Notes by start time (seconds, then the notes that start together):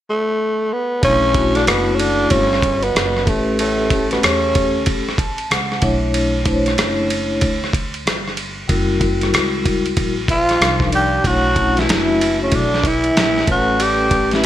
0.10 A3
0.73 B3
1.02 B1 C#3 A3 C#4 D4 E4 C#5, kick, ride
1.34 A3 D4 E4 F#4, kick, ride
1.54 D3 D4, cross-stick, ride
1.66 F#1 B2 B3, cross-stick, hi-hat pedal, ride
1.93 C#3 C#4
1.97 D3 D4, ride
2.29 G1 C#3 C#4, kick, ride
2.53 cross-stick
2.62 kick, ride
2.80 B2 B3, ride
2.95 F#1, cross-stick, hi-hat pedal, ride
3.17 cross-stick
3.25 A1 A2 A3 C#4 G4 B4, kick, ride
3.58 A2 A3, ride
3.90 A3 C#4 G4 A4, kick, ride
4.11 B2 B3, cross-stick, ride
4.23 E2 C#3 C#4, cross-stick, hi-hat pedal, ride
4.55 kick, ride
4.86 A1, kick, ride
5.09 cross-stick
5.18 A5, kick, ride
5.38 ride
5.50 C#2 F#5, cross-stick, hi-hat pedal, ride
5.72 cross-stick
5.81 B1 A3 D4 E4 C#5 E5, kick, ride
6.14 ride
6.44 A3 D4 E4 C5, kick, ride
6.53 C#5
6.66 cross-stick, ride
6.78 F#1, cross-stick, hi-hat pedal, ride
7.10 ride
7.41 D2, kick, ride
7.64 cross-stick
7.73 kick, ride
7.94 ride
8.06 G1, cross-stick, hi-hat pedal, ride
8.28 cross-stick
8.37 ride
8.68 F#1 G3 E4 F#4 A#4, kick, ride
9.00 G3 E4 F#4 A#4, kick, ride
9.21 cross-stick, ride
9.33 C#2, cross-stick, hi-hat pedal, ride
9.66 kick, ride
9.86 ride
9.97 A#1, kick, ride
10.28 F3 F4, kick, ride
10.49 cross-stick, ride
10.59 C2 F3 D4 D#4 A#4, cross-stick, hi-hat pedal, ride
10.80 kick, cross-stick
10.92 G3 G4, ride
11.23 B1 F#3 A3 D4 E4 C#5, kick, ride
11.27 F#4
11.54 A3 C#4 E4 F#4, kick, ride
11.62 D4
11.77 E3 E4, snare, ride
11.88 F#1, snare, hi-hat pedal, ride
12.21 ride
12.42 C#3 C#4
12.52 B1 D3 D4, kick, ride
12.74 snare
12.84 E3 E4, kick, ride
13.04 ride
13.16 A#1, snare, hi-hat pedal, ride
13.38 snare
13.46 A1 F#3 A3 C#4 A4 B4, kick, ride
13.51 F#4
13.80 G3 G4, ride
14.10 A3 C#4 G4 B4, kick, ride
14.31 E3 E4, snare, ride